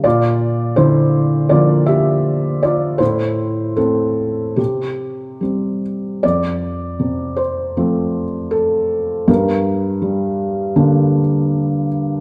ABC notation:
X:1
M:4/4
L:1/8
Q:1/4=80
K:F
V:1 name="Felt piano"
[Fd]2 [Ec]2 [Fd] [Ge]2 [Fd] | [Ec]2 [CA]2 [CG]3 z | d3 c3 A2 | B6- B z |]
V:2 name="Felt piano" clef=bass
B,,2 D,2 [D,F,B,]4 | A,,2 A,2 C,2 [G,C]2 | F,,2 C,2 [F,A,C]4 | G,,2 G,2 [D,B,D]4 |]